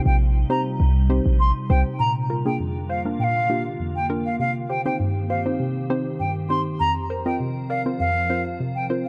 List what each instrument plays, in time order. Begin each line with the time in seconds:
Already playing: ambient pad C3 G3 D#4
0.06 808-style bass A#1, flute G5
0.50 synth pluck C4 D#4 G4 C5, flute A#5
0.80 808-style bass C2
1.10 synth pluck C4 D#4 G4 C5
1.26 808-style bass A#1
1.40 flute C6
1.70 808-style bass C2, synth pluck C4 D#4 G4 C5, flute G5
2.00 synth pluck A#2, ambient pad D3 A#3 F4, flute A#5
2.30 synth pluck F4 A#4
2.45 synth pluck A#3 D4 F4 G#4, flute G5
2.60 synth pluck F2
2.89 synth pluck F4 C5, flute F5
3.05 synth pluck A#3 D4 F4 A#4
3.20 synth pluck A#2, flute G5
3.24 flute F5
3.49 synth pluck A#3 D4 F4 G4
3.80 synth pluck F2
3.96 flute G5
4.09 synth pluck A#3 D4 F4 A#4
4.26 flute F5
4.39 synth pluck C3, ambient pad D#3 C4 G4, flute F5
4.69 synth pluck G4 C5, flute G5
4.85 synth pluck C4 D#4 G4 C5, flute G5
5.00 synth pluck G2
5.30 synth pluck G4 C5, flute F5
5.46 synth pluck C4 D#4 G4 C5
5.60 synth pluck C3
5.90 synth pluck C4 D#4 G4 C5
6.20 synth pluck G2, flute G5
6.50 synth pluck C4 D#4 G4 C5, flute C6
6.80 synth pluck F2, ambient pad F3 C4 A#4, flute A#5
7.10 synth pluck A#4 C5
7.26 synth pluck C4 F4 A#4 D#5, flute G5
7.40 synth pluck C3
7.70 synth pluck A#4 D5, flute F5
7.86 synth pluck C4 F4 A#4 C5
8.00 synth pluck F2, flute F5
8.30 synth pluck C4 F4 A#4 C5
8.60 synth pluck C3
8.75 flute G5
8.90 synth pluck C4 F4 A#4 C5